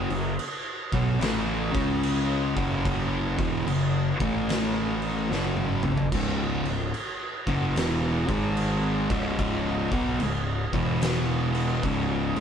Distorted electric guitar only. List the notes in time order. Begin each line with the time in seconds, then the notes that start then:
0.10 F#2 C#3
0.93 B2 F#3 B3
1.21 A2 E3 A3
1.72 C#3 G#3 C#4
2.56 F#2 C#3 F#3
3.38 E2 B2 E3
3.67 F#2 C#3
4.20 A2 E3 A3
5.31 F#2 C#3 F#3
5.85 F#2 C#3
6.14 C#2 G#2 C#3
6.67 C#2 G#2
7.48 F#2 C#3 F#3
7.77 E2 B2 E3
8.29 G#2 D#3 G#3
9.10 C#2 G#2 C#3
9.92 B2 F#3 B3
10.20 C#2 G#2
10.73 E2 B2 E3
11.83 C#2 G#2 C#3
12.37 C#2